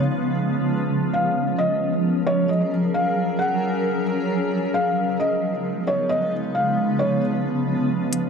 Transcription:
0.00 0.87 C#3 medium
0.00 4.48 F3 medium
0.00 0.87 G#3 medium
0.00 0.87 B3 medium
0.00 0.89 C#4 medium
0.91 4.48 F#3 medium
0.91 4.48 C#4 medium
0.91 4.48 G#4 medium
0.91 4.48 A#4 medium
1.14 1.56 F5 medium
1.58 2.22 D#5 medium
2.27 2.48 C#5 medium
2.49 2.70 D#5 medium
2.94 3.37 F5 medium
3.39 4.03 F#5 medium
4.52 8.09 C#3 medium
4.52 8.30 F3 medium
4.52 8.09 G#3 medium
4.52 8.09 B3 medium
4.52 6.30 D#4 medium
4.74 5.17 F5 medium
5.20 5.83 D#5 medium
5.87 6.09 C#5 medium
6.09 6.31 D#5 medium
6.32 8.11 C#4 medium
6.55 6.97 F5 medium
6.99 7.21 C#5 medium
8.13 8.30 F#3 medium
8.13 8.30 C#4 medium
8.13 8.30 G#4 medium
8.13 8.30 A#4 medium
8.13 closed hi-hat medium

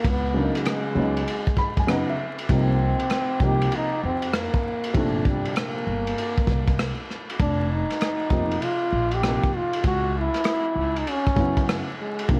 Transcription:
0.00 0.11 A#3 medium
0.04 0.47 C#2 medium
0.04 kick loud
0.04 ride medium
0.10 0.40 B3 medium
0.34 0.93 C#3 medium
0.34 0.95 F#3 medium
0.34 0.96 B3 medium
0.34 0.45 D4 medium
0.38 0.61 A#3 medium
0.44 0.98 D#4 medium
0.55 cross-stick soft
0.55 ride medium
0.59 2.21 G#3 medium
0.65 cross-stick loud
0.65 hi-hat pedal soft
0.65 ride medium
0.95 1.22 C#2 medium
0.95 1.20 C#3 medium
0.95 1.21 F#3 medium
0.95 1.21 B3 medium
0.99 1.22 D#4 medium
1.17 ride soft
1.27 ride medium
1.47 kick medium
1.57 1.77 B5 medium
1.57 kick medium
1.77 2.03 F#2 medium
1.77 1.88 G#5 medium
1.77 kick medium
1.77 ride medium
1.87 2.12 C#3 medium
1.87 2.13 F#3 medium
1.87 2.13 B3 medium
1.87 2.14 D#4 medium
1.87 2.07 F#5 medium
1.87 cross-stick loud
1.87 hi-hat pedal medium
1.87 ride medium
2.10 2.47 E5 medium
2.38 ride medium
2.49 2.92 C2 loud
2.49 2.96 C3 medium
2.49 2.97 F3 medium
2.49 2.98 A#3 medium
2.49 3.45 C4 medium
2.49 kick loud
2.49 ride medium
2.54 2.98 D#4 medium
3.00 ride soft
3.10 cross-stick medium
3.10 hi-hat pedal medium
3.10 ride medium
3.40 3.66 C2 medium
3.40 3.88 C3 medium
3.40 3.88 F3 soft
3.40 3.89 A#3 medium
3.40 3.77 G4 loud
3.40 kick medium
3.44 3.89 D#4 medium
3.61 ride medium
3.72 4.04 D#4 loud
3.72 ride medium
4.04 4.46 F2 medium
4.04 4.35 C4 medium
4.22 ride medium
4.33 4.95 A#3 medium
4.33 cross-stick loud
4.33 hi-hat pedal medium
4.33 ride medium
4.54 kick medium
4.84 ride medium
4.93 5.37 G1 medium
4.93 5.82 A#2 medium
4.93 5.81 C3 medium
4.93 5.82 F3 medium
4.93 5.28 A3 medium
4.93 5.83 D4 medium
4.93 kick loud
4.93 ride medium
5.25 5.56 G3 medium
5.25 kick medium
5.45 ride medium
5.56 7.05 A#3 medium
5.56 cross-stick loud
5.56 hi-hat pedal medium
5.56 ride medium
5.87 6.12 G1 medium
6.07 ride medium
6.18 ride medium
6.37 kick medium
6.47 6.90 C2 medium
6.47 kick medium
6.67 kick medium
6.67 ride soft
6.79 cross-stick loud
6.79 hi-hat pedal medium
6.79 ride medium
7.10 cross-stick soft
7.30 ride medium
7.40 7.82 F1 loud
7.40 7.74 D4 loud
7.40 kick loud
7.40 ride medium
7.72 8.66 D#4 medium
7.90 cross-stick soft
7.90 ride medium
8.01 cross-stick loud
8.01 hi-hat pedal medium
8.01 ride medium
8.30 8.56 F1 medium
8.30 8.55 C3 medium
8.30 8.55 F3 medium
8.30 8.56 A#3 medium
8.30 8.57 D#4 medium
8.30 kick medium
8.52 ride soft
8.62 9.17 F4 loud
8.62 ride medium
8.93 9.35 A#1 medium
9.11 9.58 G4 loud
9.11 ride soft
9.22 9.47 C3 medium
9.22 9.47 F3 medium
9.22 9.48 A#3 medium
9.22 cross-stick loud
9.22 hi-hat pedal medium
9.22 ride medium
9.26 9.49 D#4 medium
9.43 kick medium
9.57 9.86 F4 loud
9.73 ride medium
9.84 10.27 C#2 loud
9.84 10.20 F#4 loud
9.84 kick loud
9.84 ride medium
10.18 10.99 E4 loud
10.34 cross-stick soft
10.34 ride soft
10.44 cross-stick loud
10.44 hi-hat pedal medium
10.44 ride medium
10.75 11.01 C#2 medium
10.96 11.11 D#4 medium
10.96 ride soft
11.07 11.74 C#4 loud
11.07 ride medium
11.27 kick medium
11.36 11.79 F#2 medium
11.36 11.83 C#3 medium
11.36 11.83 F#3 medium
11.36 11.84 B3 medium
11.36 11.85 E4 medium
11.36 kick medium
11.57 kick medium
11.57 ride medium
11.69 cross-stick loud
11.69 hi-hat pedal medium
11.69 ride medium
12.00 12.34 G#3 medium
12.19 ride medium
12.28 12.40 C2 medium
12.28 12.40 C3 medium
12.28 12.40 F3 medium
12.28 12.40 A#3 medium
12.28 12.40 D4 medium
12.28 kick loud
12.28 ride medium
12.32 12.40 A#3 loud

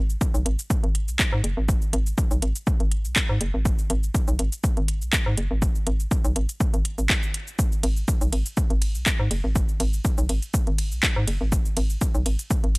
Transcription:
0.00 0.16 G#1 loud
0.10 shaker soft
0.21 kick loud
0.21 shaker medium
0.34 0.43 B1 loud
0.34 shaker soft
0.46 0.56 G#1 loud
0.46 closed hi-hat loud
0.59 closed hi-hat soft
0.59 shaker soft
0.70 kick loud
0.70 shaker medium
0.83 1.09 G#1 medium
0.83 closed hi-hat soft
0.95 closed hi-hat medium
1.08 1.17 B1 medium
1.08 shaker soft
1.19 kick loud
1.19 clap loud
1.19 shaker medium
1.32 1.42 G#2 medium
1.44 1.54 F#1 medium
1.44 closed hi-hat loud
1.57 1.76 G#1 medium
1.69 kick loud
1.69 shaker medium
1.82 shaker soft
1.93 2.13 G#1 loud
1.93 closed hi-hat loud
2.06 shaker soft
2.18 kick loud
2.18 shaker medium
2.31 2.40 B1 loud
2.31 shaker soft
2.42 2.53 G#1 loud
2.42 closed hi-hat loud
2.56 closed hi-hat soft
2.56 shaker soft
2.67 kick loud
2.67 shaker medium
2.80 3.06 G#1 loud
2.80 closed hi-hat soft
2.92 closed hi-hat loud
3.05 3.14 B1 loud
3.05 shaker soft
3.16 kick loud
3.16 clap loud
3.16 shaker medium
3.29 3.38 G#2 medium
3.41 3.51 F#1 medium
3.41 closed hi-hat loud
3.54 3.73 G#1 medium
3.65 kick loud
3.65 shaker medium
3.79 shaker soft
3.90 4.10 G#1 loud
3.90 closed hi-hat loud
4.03 shaker soft
4.15 kick loud
4.15 shaker medium
4.28 4.37 B1 loud
4.28 shaker soft
4.39 4.50 G#1 loud
4.39 closed hi-hat loud
4.52 closed hi-hat soft
4.52 shaker soft
4.64 kick loud
4.64 shaker medium
4.77 5.03 G#1 loud
4.77 closed hi-hat soft
4.88 closed hi-hat loud
5.02 5.11 B1 medium
5.02 shaker soft
5.13 kick loud
5.13 clap loud
5.13 shaker medium
5.26 5.35 G#2 medium
5.37 5.48 F#1 medium
5.37 closed hi-hat loud
5.51 5.70 G#1 medium
5.62 kick loud
5.62 shaker medium
5.75 shaker soft
5.87 6.07 G#1 loud
5.87 closed hi-hat medium
6.00 shaker soft
6.11 kick loud
6.11 shaker medium
6.24 6.34 B1 loud
6.24 shaker soft
6.36 6.46 G#1 loud
6.36 closed hi-hat loud
6.49 closed hi-hat soft
6.49 shaker soft
6.60 kick loud
6.60 shaker medium
6.74 6.83 G#1 loud
6.74 closed hi-hat soft
6.74 shaker soft
6.85 closed hi-hat loud
6.98 7.07 G#1 medium
6.98 shaker soft
7.10 kick loud
7.10 clap loud
7.10 shaker medium
7.23 shaker soft
7.34 closed hi-hat loud
7.47 shaker soft
7.59 kick loud
7.59 shaker medium
7.72 shaker soft
7.83 8.03 G#1 loud
7.83 closed hi-hat loud
7.83 ride medium
7.97 shaker soft
8.08 kick loud
8.08 shaker medium
8.21 8.30 B1 loud
8.21 shaker soft
8.33 8.43 G#1 medium
8.33 closed hi-hat medium
8.33 ride medium
8.46 closed hi-hat soft
8.46 shaker soft
8.57 kick loud
8.57 shaker medium
8.70 8.96 G#1 loud
8.70 closed hi-hat soft
8.82 closed hi-hat medium
8.82 ride medium
8.95 9.04 B1 loud
8.95 shaker soft
9.06 kick loud
9.06 clap loud
9.06 shaker medium
9.19 9.28 G#2 medium
9.31 9.41 F#1 medium
9.31 closed hi-hat loud
9.31 ride medium
9.44 9.63 G#1 medium
9.55 kick loud
9.55 shaker medium
9.69 shaker soft
9.80 10.00 G#1 loud
9.80 closed hi-hat medium
9.80 ride medium
9.93 shaker soft
10.05 kick loud
10.05 shaker medium
10.18 10.27 B1 loud
10.18 shaker soft
10.29 10.40 G#1 loud
10.29 closed hi-hat medium
10.29 ride medium
10.42 closed hi-hat soft
10.42 shaker soft
10.54 kick loud
10.54 shaker medium
10.67 10.93 G#1 medium
10.67 closed hi-hat soft
10.78 closed hi-hat medium
10.78 ride loud
10.92 11.01 B1 loud
10.92 shaker soft
11.03 kick loud
11.03 clap loud
11.03 shaker medium
11.16 11.25 G#2 medium
11.28 11.38 F#1 medium
11.28 closed hi-hat medium
11.28 ride loud
11.41 11.60 G#1 medium
11.52 kick loud
11.52 shaker medium
11.65 shaker soft
11.77 11.97 G#1 loud
11.77 closed hi-hat medium
11.77 ride medium
11.90 shaker soft
12.01 kick loud
12.01 shaker medium
12.14 12.24 B1 loud
12.14 shaker soft
12.26 12.36 G#1 medium
12.26 closed hi-hat medium
12.26 ride medium
12.39 closed hi-hat soft
12.39 shaker soft
12.50 kick loud
12.50 shaker medium
12.64 12.78 G#1 loud
12.64 closed hi-hat soft
12.75 closed hi-hat medium
12.75 ride medium

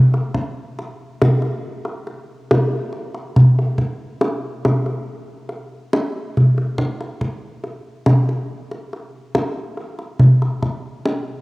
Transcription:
0.14 kendang slap soft
0.34 kendang slap soft
0.34 kendang low medium
0.79 kendang slap soft
1.22 kendang slap soft
1.22 kendang high medium
1.22 kendang low medium
1.42 kendang slap soft
1.85 kendang slap soft
2.07 kendang slap soft
2.51 kendang high medium
2.51 kendang low medium
2.93 kendang slap soft
3.15 kendang slap soft
3.36 kendang slap soft
3.36 kendang low medium
3.59 kendang slap soft
3.78 kendang slap soft
3.78 kendang low medium
4.21 kendang slap soft
4.21 kendang high soft
4.65 kendang slap soft
4.65 kendang high medium
4.65 kendang low soft
4.86 kendang slap soft
5.49 kendang slap soft
5.93 kendang high medium
6.37 kendang slap soft
6.37 kendang low soft
6.58 kendang slap soft
6.78 kendang slap soft
6.78 kendang low medium
7.01 kendang slap soft
7.21 kendang slap soft
7.21 kendang low soft
7.64 kendang slap soft
8.06 kendang slap soft
8.06 kendang high soft
8.06 kendang low soft
8.29 kendang slap soft
8.71 kendang slap soft
8.93 kendang slap soft
9.35 kendang high medium
9.35 kendang low soft
9.77 kendang slap soft
9.99 kendang slap soft
10.20 kendang slap soft
10.20 kendang low medium
10.42 kendang slap soft
10.63 kendang slap soft
10.63 kendang low medium
11.05 kendang slap soft
11.05 kendang high soft

